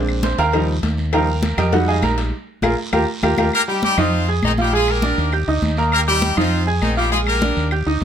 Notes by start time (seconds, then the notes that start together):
Already playing: A#1 G#3 C4 D4
0.08 high conga, claves
0.23 C5 C6, cowbell, high conga, short guiro
0.38 D#2 A#4 F5 G5 A#5, cowbell, high conga, short guiro
0.53 F3 G3 D#4, cowbell, high conga, long guiro, claves
0.69 high conga
0.83 D#2, cowbell, high conga, short guiro
0.98 high conga, short guiro
1.12 F3 G3 D#4 A#4 F5 G5 A#5, cowbell, high conga, long guiro, claves
1.28 high conga
1.43 cowbell, high conga, short guiro
1.58 F2 G4 A#4 D#5 G5, cowbell, high conga, low conga, short guiro, claves
1.72 G3 G#3 D#4 F#4 F#5, cowbell, high conga, low conga, long guiro
1.88 G#4 D#5 F5 G#5, high conga
2.02 A#1 A#4 A#5, cowbell, high conga, short guiro, claves
2.18 cowbell, short guiro
2.62 A#1 F4 G#4 A#4, cowbell, high conga, long guiro, claves
2.93 D#2 F4 G4 A#4, cowbell, high conga, long guiro, claves
3.22 D#2 F4 G4 A#4, cowbell, high conga, long guiro, claves
3.37 D#2 F4 G4 A#4, cowbell, high conga, long guiro, claves
3.52 A#3 G4 A#4, high conga, long guiro, claves
3.67 G3 D#4 G4 G5, high conga
3.82 G3 D#4 G4, high conga, short guiro
3.98 F2 F3 C4 D#4 F4 D#5 D#6, high conga, low conga, short guiro, claves
4.13 high conga, long guiro
4.28 G#4 G#5 G#6, high conga
4.42 A#1 D#3 C4 D#4, high conga, short guiro, claves
4.57 G3 D#4 F4 G4 F5 F6, high conga, short guiro
4.72 G#3 F4 G#4 G#5, high conga, long guiro
4.88 A#3 G4 A#4, high conga, claves
5.02 D4 D5 D6, high conga, short guiro
5.17 D#2, high conga, short guiro
5.32 G4 G5 G6, high conga, long guiro, claves
5.48 D2 D#4 D#5 D#6, high conga
5.62 D#2, high conga, short guiro
5.77 A#3 A#4 A#5, high conga, short guiro
5.92 A#3 G4 A#4, high conga, long guiro, claves
6.07 G3 D#4 G4 G5, high conga
6.22 high conga, short guiro
6.37 F2 F3 C4 D#4 F4 D#5 D#6, high conga, low conga, short guiro, claves
6.51 high conga, long guiro
6.67 G#4 G#5 G#6, high conga
6.81 A#1 D#3 C4 D#4, high conga, short guiro, claves
6.96 G3 D#4 F4 G4 F5 F6, short guiro
7.10 G#3 F4 G#4 G#5, high conga, long guiro
7.26 A#3 G4 A#4, high conga, claves
7.40 D4 D5 D6, high conga, short guiro
7.56 D#2, high conga, short guiro
7.71 G4 G5 G6, high conga, long guiro, claves
7.86 D2 D#4 D#5 D#6, high conga
8.01 short guiro